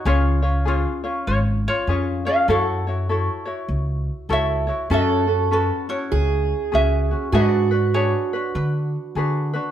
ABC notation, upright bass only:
X:1
M:4/4
L:1/8
Q:"Swing" 1/4=99
K:F#m
V:1 name="Upright bass" clef=bass
C,,4 G,,,2 ^E,,2 | F,,4 C,,2 C,,2 | F,,4 C,,2 C,,2 | G,,4 D,2 D,2 |]